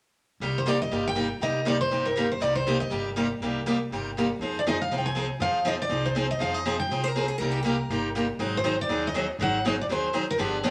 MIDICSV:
0, 0, Header, 1, 5, 480
1, 0, Start_track
1, 0, Key_signature, -3, "minor"
1, 0, Tempo, 249377
1, 795, Time_signature, 4, 2, 24, 8
1, 20601, End_track
2, 0, Start_track
2, 0, Title_t, "Steel-string acoustic guitar"
2, 0, Program_c, 0, 25
2, 1117, Note_on_c, 0, 72, 74
2, 1310, Note_off_c, 0, 72, 0
2, 1310, Note_on_c, 0, 74, 81
2, 1563, Note_off_c, 0, 74, 0
2, 1573, Note_on_c, 0, 75, 89
2, 2050, Note_off_c, 0, 75, 0
2, 2070, Note_on_c, 0, 79, 90
2, 2741, Note_off_c, 0, 79, 0
2, 2749, Note_on_c, 0, 75, 91
2, 3227, Note_off_c, 0, 75, 0
2, 3235, Note_on_c, 0, 74, 76
2, 3471, Note_off_c, 0, 74, 0
2, 3479, Note_on_c, 0, 72, 87
2, 3955, Note_on_c, 0, 70, 68
2, 3964, Note_off_c, 0, 72, 0
2, 4395, Note_off_c, 0, 70, 0
2, 4457, Note_on_c, 0, 72, 73
2, 4651, Note_off_c, 0, 72, 0
2, 4651, Note_on_c, 0, 74, 81
2, 4908, Note_off_c, 0, 74, 0
2, 4916, Note_on_c, 0, 72, 80
2, 5356, Note_off_c, 0, 72, 0
2, 5393, Note_on_c, 0, 75, 77
2, 5834, Note_off_c, 0, 75, 0
2, 8833, Note_on_c, 0, 74, 81
2, 8911, Note_off_c, 0, 74, 0
2, 9020, Note_on_c, 0, 75, 80
2, 9253, Note_off_c, 0, 75, 0
2, 9268, Note_on_c, 0, 77, 79
2, 9575, Note_off_c, 0, 77, 0
2, 9582, Note_on_c, 0, 79, 63
2, 9717, Note_off_c, 0, 79, 0
2, 9734, Note_on_c, 0, 80, 81
2, 10369, Note_off_c, 0, 80, 0
2, 10426, Note_on_c, 0, 77, 87
2, 10908, Note_off_c, 0, 77, 0
2, 10925, Note_on_c, 0, 75, 76
2, 11021, Note_off_c, 0, 75, 0
2, 11196, Note_on_c, 0, 74, 86
2, 11618, Note_off_c, 0, 74, 0
2, 11656, Note_on_c, 0, 72, 67
2, 12088, Note_off_c, 0, 72, 0
2, 12139, Note_on_c, 0, 75, 82
2, 12338, Note_off_c, 0, 75, 0
2, 12346, Note_on_c, 0, 77, 80
2, 12591, Note_off_c, 0, 77, 0
2, 12591, Note_on_c, 0, 75, 83
2, 13067, Note_off_c, 0, 75, 0
2, 13080, Note_on_c, 0, 79, 82
2, 13519, Note_off_c, 0, 79, 0
2, 16500, Note_on_c, 0, 72, 86
2, 16910, Note_off_c, 0, 72, 0
2, 16962, Note_on_c, 0, 74, 84
2, 17380, Note_off_c, 0, 74, 0
2, 17462, Note_on_c, 0, 75, 84
2, 17871, Note_off_c, 0, 75, 0
2, 18138, Note_on_c, 0, 78, 96
2, 18556, Note_off_c, 0, 78, 0
2, 18623, Note_on_c, 0, 75, 84
2, 18719, Note_off_c, 0, 75, 0
2, 18891, Note_on_c, 0, 74, 83
2, 18973, Note_off_c, 0, 74, 0
2, 19096, Note_on_c, 0, 72, 87
2, 19546, Note_off_c, 0, 72, 0
2, 19835, Note_on_c, 0, 70, 83
2, 19997, Note_off_c, 0, 70, 0
2, 20005, Note_on_c, 0, 68, 92
2, 20601, Note_off_c, 0, 68, 0
2, 20601, End_track
3, 0, Start_track
3, 0, Title_t, "Steel-string acoustic guitar"
3, 0, Program_c, 1, 25
3, 13544, Note_on_c, 1, 72, 100
3, 13618, Note_off_c, 1, 72, 0
3, 13618, Note_on_c, 1, 70, 87
3, 14007, Note_off_c, 1, 70, 0
3, 14015, Note_on_c, 1, 68, 80
3, 14197, Note_off_c, 1, 68, 0
3, 14205, Note_on_c, 1, 70, 87
3, 14458, Note_off_c, 1, 70, 0
3, 14466, Note_on_c, 1, 67, 73
3, 14671, Note_off_c, 1, 67, 0
3, 14679, Note_on_c, 1, 70, 67
3, 15591, Note_off_c, 1, 70, 0
3, 20601, End_track
4, 0, Start_track
4, 0, Title_t, "Steel-string acoustic guitar"
4, 0, Program_c, 2, 25
4, 796, Note_on_c, 2, 48, 55
4, 804, Note_on_c, 2, 55, 64
4, 810, Note_on_c, 2, 58, 56
4, 823, Note_on_c, 2, 63, 64
4, 825, Note_on_c, 2, 67, 67
4, 1138, Note_off_c, 2, 48, 0
4, 1142, Note_off_c, 2, 55, 0
4, 1145, Note_off_c, 2, 58, 0
4, 1152, Note_off_c, 2, 63, 0
4, 1153, Note_off_c, 2, 67, 0
4, 1266, Note_on_c, 2, 48, 78
4, 1274, Note_on_c, 2, 55, 79
4, 1279, Note_on_c, 2, 58, 77
4, 1287, Note_on_c, 2, 63, 80
4, 1303, Note_on_c, 2, 67, 82
4, 1461, Note_off_c, 2, 48, 0
4, 1465, Note_off_c, 2, 55, 0
4, 1467, Note_off_c, 2, 58, 0
4, 1471, Note_off_c, 2, 63, 0
4, 1479, Note_off_c, 2, 67, 0
4, 1760, Note_on_c, 2, 55, 66
4, 1763, Note_on_c, 2, 58, 57
4, 1765, Note_on_c, 2, 48, 60
4, 1780, Note_on_c, 2, 63, 60
4, 1788, Note_on_c, 2, 67, 63
4, 2100, Note_off_c, 2, 55, 0
4, 2102, Note_off_c, 2, 58, 0
4, 2103, Note_off_c, 2, 48, 0
4, 2110, Note_off_c, 2, 63, 0
4, 2114, Note_off_c, 2, 67, 0
4, 2217, Note_on_c, 2, 48, 70
4, 2231, Note_on_c, 2, 55, 71
4, 2231, Note_on_c, 2, 58, 77
4, 2237, Note_on_c, 2, 63, 76
4, 2242, Note_on_c, 2, 67, 72
4, 2417, Note_off_c, 2, 48, 0
4, 2424, Note_off_c, 2, 55, 0
4, 2424, Note_off_c, 2, 58, 0
4, 2427, Note_off_c, 2, 63, 0
4, 2429, Note_off_c, 2, 67, 0
4, 2717, Note_on_c, 2, 48, 55
4, 2728, Note_on_c, 2, 55, 60
4, 2734, Note_on_c, 2, 63, 60
4, 2736, Note_on_c, 2, 58, 68
4, 2744, Note_on_c, 2, 67, 73
4, 3059, Note_off_c, 2, 48, 0
4, 3065, Note_off_c, 2, 55, 0
4, 3068, Note_off_c, 2, 63, 0
4, 3069, Note_off_c, 2, 58, 0
4, 3073, Note_off_c, 2, 67, 0
4, 3178, Note_on_c, 2, 48, 73
4, 3192, Note_on_c, 2, 58, 80
4, 3198, Note_on_c, 2, 55, 86
4, 3203, Note_on_c, 2, 67, 84
4, 3204, Note_on_c, 2, 63, 98
4, 3378, Note_off_c, 2, 48, 0
4, 3385, Note_off_c, 2, 58, 0
4, 3388, Note_off_c, 2, 55, 0
4, 3390, Note_off_c, 2, 67, 0
4, 3391, Note_off_c, 2, 63, 0
4, 3680, Note_on_c, 2, 48, 62
4, 3687, Note_on_c, 2, 58, 67
4, 3688, Note_on_c, 2, 55, 62
4, 3703, Note_on_c, 2, 67, 67
4, 3709, Note_on_c, 2, 63, 61
4, 4021, Note_off_c, 2, 48, 0
4, 4025, Note_off_c, 2, 55, 0
4, 4025, Note_off_c, 2, 58, 0
4, 4033, Note_off_c, 2, 67, 0
4, 4036, Note_off_c, 2, 63, 0
4, 4152, Note_on_c, 2, 48, 71
4, 4170, Note_on_c, 2, 55, 73
4, 4178, Note_on_c, 2, 58, 86
4, 4182, Note_on_c, 2, 63, 74
4, 4185, Note_on_c, 2, 67, 79
4, 4345, Note_off_c, 2, 48, 0
4, 4354, Note_off_c, 2, 55, 0
4, 4358, Note_off_c, 2, 58, 0
4, 4360, Note_off_c, 2, 63, 0
4, 4362, Note_off_c, 2, 67, 0
4, 4624, Note_on_c, 2, 48, 59
4, 4636, Note_on_c, 2, 55, 65
4, 4648, Note_on_c, 2, 58, 65
4, 4654, Note_on_c, 2, 63, 60
4, 4657, Note_on_c, 2, 67, 72
4, 4974, Note_off_c, 2, 48, 0
4, 4980, Note_off_c, 2, 55, 0
4, 4985, Note_off_c, 2, 58, 0
4, 4989, Note_off_c, 2, 63, 0
4, 4990, Note_off_c, 2, 67, 0
4, 5131, Note_on_c, 2, 48, 81
4, 5137, Note_on_c, 2, 55, 80
4, 5148, Note_on_c, 2, 63, 93
4, 5150, Note_on_c, 2, 58, 73
4, 5160, Note_on_c, 2, 67, 78
4, 5315, Note_off_c, 2, 48, 0
4, 5318, Note_off_c, 2, 55, 0
4, 5323, Note_off_c, 2, 63, 0
4, 5324, Note_off_c, 2, 58, 0
4, 5329, Note_off_c, 2, 67, 0
4, 5582, Note_on_c, 2, 48, 63
4, 5601, Note_on_c, 2, 63, 66
4, 5602, Note_on_c, 2, 55, 64
4, 5610, Note_on_c, 2, 67, 69
4, 5611, Note_on_c, 2, 58, 62
4, 5933, Note_off_c, 2, 48, 0
4, 5943, Note_off_c, 2, 55, 0
4, 5943, Note_off_c, 2, 63, 0
4, 5947, Note_off_c, 2, 58, 0
4, 5947, Note_off_c, 2, 67, 0
4, 6081, Note_on_c, 2, 48, 77
4, 6093, Note_on_c, 2, 55, 82
4, 6096, Note_on_c, 2, 58, 74
4, 6103, Note_on_c, 2, 63, 79
4, 6105, Note_on_c, 2, 67, 88
4, 6271, Note_off_c, 2, 48, 0
4, 6276, Note_off_c, 2, 55, 0
4, 6278, Note_off_c, 2, 58, 0
4, 6281, Note_off_c, 2, 63, 0
4, 6282, Note_off_c, 2, 67, 0
4, 6581, Note_on_c, 2, 48, 61
4, 6586, Note_on_c, 2, 58, 65
4, 6590, Note_on_c, 2, 55, 57
4, 6598, Note_on_c, 2, 63, 61
4, 6616, Note_on_c, 2, 67, 64
4, 6913, Note_off_c, 2, 48, 0
4, 6915, Note_off_c, 2, 58, 0
4, 6917, Note_off_c, 2, 55, 0
4, 6921, Note_off_c, 2, 63, 0
4, 6930, Note_off_c, 2, 67, 0
4, 7048, Note_on_c, 2, 48, 79
4, 7056, Note_on_c, 2, 55, 79
4, 7056, Note_on_c, 2, 58, 81
4, 7070, Note_on_c, 2, 63, 83
4, 7082, Note_on_c, 2, 67, 88
4, 7234, Note_off_c, 2, 48, 0
4, 7238, Note_off_c, 2, 55, 0
4, 7238, Note_off_c, 2, 58, 0
4, 7245, Note_off_c, 2, 63, 0
4, 7251, Note_off_c, 2, 67, 0
4, 7552, Note_on_c, 2, 48, 59
4, 7567, Note_on_c, 2, 55, 62
4, 7567, Note_on_c, 2, 58, 62
4, 7567, Note_on_c, 2, 63, 58
4, 7572, Note_on_c, 2, 67, 71
4, 7879, Note_off_c, 2, 48, 0
4, 7886, Note_off_c, 2, 55, 0
4, 7886, Note_off_c, 2, 58, 0
4, 7886, Note_off_c, 2, 63, 0
4, 7889, Note_off_c, 2, 67, 0
4, 8029, Note_on_c, 2, 48, 62
4, 8046, Note_on_c, 2, 58, 66
4, 8048, Note_on_c, 2, 55, 69
4, 8050, Note_on_c, 2, 63, 76
4, 8057, Note_on_c, 2, 67, 80
4, 8205, Note_off_c, 2, 48, 0
4, 8213, Note_off_c, 2, 58, 0
4, 8214, Note_off_c, 2, 55, 0
4, 8215, Note_off_c, 2, 63, 0
4, 8219, Note_off_c, 2, 67, 0
4, 8483, Note_on_c, 2, 53, 53
4, 8503, Note_on_c, 2, 60, 62
4, 8512, Note_on_c, 2, 63, 65
4, 8520, Note_on_c, 2, 68, 67
4, 8824, Note_off_c, 2, 53, 0
4, 8834, Note_off_c, 2, 60, 0
4, 8839, Note_off_c, 2, 63, 0
4, 8843, Note_off_c, 2, 68, 0
4, 8980, Note_on_c, 2, 53, 88
4, 8985, Note_on_c, 2, 60, 83
4, 8992, Note_on_c, 2, 63, 85
4, 9000, Note_on_c, 2, 68, 80
4, 9160, Note_off_c, 2, 53, 0
4, 9163, Note_off_c, 2, 60, 0
4, 9166, Note_off_c, 2, 63, 0
4, 9171, Note_off_c, 2, 68, 0
4, 9457, Note_on_c, 2, 53, 61
4, 9466, Note_on_c, 2, 63, 71
4, 9468, Note_on_c, 2, 60, 60
4, 9473, Note_on_c, 2, 68, 60
4, 9791, Note_off_c, 2, 53, 0
4, 9796, Note_off_c, 2, 63, 0
4, 9797, Note_off_c, 2, 60, 0
4, 9799, Note_off_c, 2, 68, 0
4, 9910, Note_on_c, 2, 53, 69
4, 9922, Note_on_c, 2, 60, 71
4, 9943, Note_on_c, 2, 63, 81
4, 9946, Note_on_c, 2, 68, 83
4, 10105, Note_off_c, 2, 53, 0
4, 10112, Note_off_c, 2, 60, 0
4, 10122, Note_off_c, 2, 63, 0
4, 10123, Note_off_c, 2, 68, 0
4, 10395, Note_on_c, 2, 53, 61
4, 10398, Note_on_c, 2, 60, 61
4, 10423, Note_on_c, 2, 63, 68
4, 10425, Note_on_c, 2, 68, 65
4, 10740, Note_off_c, 2, 53, 0
4, 10742, Note_off_c, 2, 60, 0
4, 10754, Note_off_c, 2, 63, 0
4, 10755, Note_off_c, 2, 68, 0
4, 10869, Note_on_c, 2, 53, 77
4, 10872, Note_on_c, 2, 60, 86
4, 10884, Note_on_c, 2, 63, 86
4, 10886, Note_on_c, 2, 68, 86
4, 11065, Note_off_c, 2, 53, 0
4, 11066, Note_off_c, 2, 60, 0
4, 11073, Note_off_c, 2, 63, 0
4, 11074, Note_off_c, 2, 68, 0
4, 11344, Note_on_c, 2, 60, 62
4, 11346, Note_on_c, 2, 53, 57
4, 11359, Note_on_c, 2, 63, 62
4, 11369, Note_on_c, 2, 68, 74
4, 11695, Note_off_c, 2, 60, 0
4, 11696, Note_off_c, 2, 53, 0
4, 11702, Note_off_c, 2, 63, 0
4, 11707, Note_off_c, 2, 68, 0
4, 11834, Note_on_c, 2, 53, 69
4, 11853, Note_on_c, 2, 60, 83
4, 11854, Note_on_c, 2, 63, 85
4, 11862, Note_on_c, 2, 68, 77
4, 12028, Note_off_c, 2, 53, 0
4, 12037, Note_off_c, 2, 60, 0
4, 12038, Note_off_c, 2, 63, 0
4, 12042, Note_off_c, 2, 68, 0
4, 12298, Note_on_c, 2, 53, 61
4, 12321, Note_on_c, 2, 60, 67
4, 12323, Note_on_c, 2, 63, 68
4, 12328, Note_on_c, 2, 68, 71
4, 12652, Note_off_c, 2, 53, 0
4, 12663, Note_off_c, 2, 60, 0
4, 12664, Note_off_c, 2, 63, 0
4, 12667, Note_off_c, 2, 68, 0
4, 12809, Note_on_c, 2, 53, 85
4, 12811, Note_on_c, 2, 60, 87
4, 12825, Note_on_c, 2, 63, 92
4, 12828, Note_on_c, 2, 68, 94
4, 12995, Note_off_c, 2, 53, 0
4, 12996, Note_off_c, 2, 60, 0
4, 13003, Note_off_c, 2, 63, 0
4, 13005, Note_off_c, 2, 68, 0
4, 13297, Note_on_c, 2, 53, 58
4, 13309, Note_on_c, 2, 60, 69
4, 13316, Note_on_c, 2, 63, 67
4, 13319, Note_on_c, 2, 68, 72
4, 13631, Note_off_c, 2, 53, 0
4, 13637, Note_off_c, 2, 60, 0
4, 13641, Note_off_c, 2, 63, 0
4, 13642, Note_off_c, 2, 68, 0
4, 13772, Note_on_c, 2, 53, 69
4, 13776, Note_on_c, 2, 60, 76
4, 13789, Note_on_c, 2, 63, 75
4, 13792, Note_on_c, 2, 68, 81
4, 13957, Note_off_c, 2, 53, 0
4, 13958, Note_off_c, 2, 60, 0
4, 13965, Note_off_c, 2, 63, 0
4, 13966, Note_off_c, 2, 68, 0
4, 14250, Note_on_c, 2, 48, 65
4, 14260, Note_on_c, 2, 55, 69
4, 14274, Note_on_c, 2, 58, 62
4, 14278, Note_on_c, 2, 63, 72
4, 14279, Note_on_c, 2, 67, 66
4, 14588, Note_off_c, 2, 48, 0
4, 14592, Note_off_c, 2, 55, 0
4, 14600, Note_off_c, 2, 58, 0
4, 14602, Note_off_c, 2, 63, 0
4, 14602, Note_off_c, 2, 67, 0
4, 14713, Note_on_c, 2, 48, 78
4, 14716, Note_on_c, 2, 55, 81
4, 14731, Note_on_c, 2, 63, 83
4, 14737, Note_on_c, 2, 58, 79
4, 14747, Note_on_c, 2, 67, 76
4, 14907, Note_off_c, 2, 48, 0
4, 14908, Note_off_c, 2, 55, 0
4, 14916, Note_off_c, 2, 63, 0
4, 14919, Note_off_c, 2, 58, 0
4, 14924, Note_off_c, 2, 67, 0
4, 15214, Note_on_c, 2, 48, 59
4, 15215, Note_on_c, 2, 55, 60
4, 15215, Note_on_c, 2, 58, 72
4, 15231, Note_on_c, 2, 63, 58
4, 15235, Note_on_c, 2, 67, 68
4, 15549, Note_off_c, 2, 48, 0
4, 15549, Note_off_c, 2, 55, 0
4, 15550, Note_off_c, 2, 58, 0
4, 15558, Note_off_c, 2, 63, 0
4, 15559, Note_off_c, 2, 67, 0
4, 15690, Note_on_c, 2, 48, 70
4, 15692, Note_on_c, 2, 55, 71
4, 15698, Note_on_c, 2, 58, 67
4, 15705, Note_on_c, 2, 63, 78
4, 15711, Note_on_c, 2, 67, 84
4, 15875, Note_off_c, 2, 48, 0
4, 15876, Note_off_c, 2, 55, 0
4, 15879, Note_off_c, 2, 58, 0
4, 15882, Note_off_c, 2, 63, 0
4, 15885, Note_off_c, 2, 67, 0
4, 16151, Note_on_c, 2, 51, 58
4, 16160, Note_on_c, 2, 54, 65
4, 16161, Note_on_c, 2, 60, 68
4, 16165, Note_on_c, 2, 63, 71
4, 16169, Note_on_c, 2, 68, 72
4, 16497, Note_off_c, 2, 51, 0
4, 16502, Note_off_c, 2, 54, 0
4, 16502, Note_off_c, 2, 60, 0
4, 16505, Note_off_c, 2, 63, 0
4, 16506, Note_off_c, 2, 68, 0
4, 16626, Note_on_c, 2, 51, 75
4, 16630, Note_on_c, 2, 60, 81
4, 16638, Note_on_c, 2, 54, 83
4, 16643, Note_on_c, 2, 63, 85
4, 16659, Note_on_c, 2, 68, 83
4, 16823, Note_off_c, 2, 51, 0
4, 16825, Note_off_c, 2, 60, 0
4, 16828, Note_off_c, 2, 54, 0
4, 16831, Note_off_c, 2, 63, 0
4, 16839, Note_off_c, 2, 68, 0
4, 17112, Note_on_c, 2, 60, 60
4, 17113, Note_on_c, 2, 51, 64
4, 17119, Note_on_c, 2, 54, 61
4, 17128, Note_on_c, 2, 68, 69
4, 17129, Note_on_c, 2, 63, 68
4, 17457, Note_off_c, 2, 60, 0
4, 17458, Note_off_c, 2, 51, 0
4, 17461, Note_off_c, 2, 54, 0
4, 17465, Note_off_c, 2, 68, 0
4, 17466, Note_off_c, 2, 63, 0
4, 17598, Note_on_c, 2, 51, 75
4, 17609, Note_on_c, 2, 54, 84
4, 17618, Note_on_c, 2, 60, 71
4, 17620, Note_on_c, 2, 63, 75
4, 17623, Note_on_c, 2, 68, 78
4, 17788, Note_off_c, 2, 51, 0
4, 17794, Note_off_c, 2, 54, 0
4, 17798, Note_off_c, 2, 60, 0
4, 17799, Note_off_c, 2, 63, 0
4, 17801, Note_off_c, 2, 68, 0
4, 18082, Note_on_c, 2, 51, 61
4, 18103, Note_on_c, 2, 54, 65
4, 18104, Note_on_c, 2, 60, 62
4, 18107, Note_on_c, 2, 63, 71
4, 18111, Note_on_c, 2, 68, 62
4, 18422, Note_off_c, 2, 51, 0
4, 18432, Note_off_c, 2, 54, 0
4, 18433, Note_off_c, 2, 60, 0
4, 18434, Note_off_c, 2, 63, 0
4, 18436, Note_off_c, 2, 68, 0
4, 18569, Note_on_c, 2, 51, 78
4, 18579, Note_on_c, 2, 54, 82
4, 18585, Note_on_c, 2, 60, 92
4, 18592, Note_on_c, 2, 63, 79
4, 18602, Note_on_c, 2, 68, 92
4, 18753, Note_off_c, 2, 51, 0
4, 18758, Note_off_c, 2, 54, 0
4, 18761, Note_off_c, 2, 60, 0
4, 18765, Note_off_c, 2, 63, 0
4, 18769, Note_off_c, 2, 68, 0
4, 19042, Note_on_c, 2, 54, 61
4, 19051, Note_on_c, 2, 51, 64
4, 19056, Note_on_c, 2, 63, 62
4, 19058, Note_on_c, 2, 60, 65
4, 19080, Note_on_c, 2, 68, 72
4, 19381, Note_off_c, 2, 54, 0
4, 19386, Note_off_c, 2, 51, 0
4, 19388, Note_off_c, 2, 63, 0
4, 19389, Note_off_c, 2, 60, 0
4, 19400, Note_off_c, 2, 68, 0
4, 19499, Note_on_c, 2, 51, 68
4, 19508, Note_on_c, 2, 54, 75
4, 19512, Note_on_c, 2, 60, 80
4, 19516, Note_on_c, 2, 63, 77
4, 19532, Note_on_c, 2, 68, 82
4, 19697, Note_off_c, 2, 51, 0
4, 19702, Note_off_c, 2, 54, 0
4, 19704, Note_off_c, 2, 60, 0
4, 19705, Note_off_c, 2, 63, 0
4, 19714, Note_off_c, 2, 68, 0
4, 19976, Note_on_c, 2, 50, 65
4, 19986, Note_on_c, 2, 53, 66
4, 19994, Note_on_c, 2, 62, 70
4, 20001, Note_on_c, 2, 59, 63
4, 20013, Note_on_c, 2, 67, 77
4, 20327, Note_off_c, 2, 50, 0
4, 20332, Note_off_c, 2, 53, 0
4, 20336, Note_off_c, 2, 62, 0
4, 20340, Note_off_c, 2, 59, 0
4, 20346, Note_off_c, 2, 67, 0
4, 20469, Note_on_c, 2, 53, 89
4, 20476, Note_on_c, 2, 50, 82
4, 20483, Note_on_c, 2, 59, 78
4, 20484, Note_on_c, 2, 62, 94
4, 20502, Note_on_c, 2, 67, 96
4, 20601, Note_off_c, 2, 50, 0
4, 20601, Note_off_c, 2, 53, 0
4, 20601, Note_off_c, 2, 59, 0
4, 20601, Note_off_c, 2, 62, 0
4, 20601, Note_off_c, 2, 67, 0
4, 20601, End_track
5, 0, Start_track
5, 0, Title_t, "Upright bass"
5, 0, Program_c, 3, 32
5, 774, Note_on_c, 3, 36, 72
5, 1551, Note_off_c, 3, 36, 0
5, 1741, Note_on_c, 3, 31, 75
5, 2516, Note_off_c, 3, 31, 0
5, 2701, Note_on_c, 3, 36, 75
5, 3476, Note_off_c, 3, 36, 0
5, 3682, Note_on_c, 3, 31, 74
5, 4449, Note_off_c, 3, 31, 0
5, 4639, Note_on_c, 3, 36, 79
5, 5408, Note_off_c, 3, 36, 0
5, 5602, Note_on_c, 3, 31, 78
5, 6369, Note_off_c, 3, 31, 0
5, 6547, Note_on_c, 3, 36, 76
5, 7321, Note_off_c, 3, 36, 0
5, 7527, Note_on_c, 3, 31, 73
5, 8293, Note_off_c, 3, 31, 0
5, 8458, Note_on_c, 3, 41, 83
5, 9236, Note_off_c, 3, 41, 0
5, 9410, Note_on_c, 3, 36, 73
5, 10191, Note_off_c, 3, 36, 0
5, 10384, Note_on_c, 3, 41, 79
5, 11159, Note_off_c, 3, 41, 0
5, 11344, Note_on_c, 3, 36, 76
5, 12119, Note_off_c, 3, 36, 0
5, 12304, Note_on_c, 3, 41, 79
5, 13079, Note_off_c, 3, 41, 0
5, 13263, Note_on_c, 3, 36, 74
5, 14038, Note_off_c, 3, 36, 0
5, 14237, Note_on_c, 3, 36, 85
5, 15006, Note_off_c, 3, 36, 0
5, 15191, Note_on_c, 3, 31, 74
5, 15963, Note_off_c, 3, 31, 0
5, 16148, Note_on_c, 3, 32, 83
5, 16921, Note_off_c, 3, 32, 0
5, 17110, Note_on_c, 3, 39, 81
5, 17881, Note_off_c, 3, 39, 0
5, 18068, Note_on_c, 3, 32, 86
5, 18840, Note_off_c, 3, 32, 0
5, 19024, Note_on_c, 3, 39, 74
5, 19796, Note_off_c, 3, 39, 0
5, 19980, Note_on_c, 3, 31, 76
5, 20601, Note_off_c, 3, 31, 0
5, 20601, End_track
0, 0, End_of_file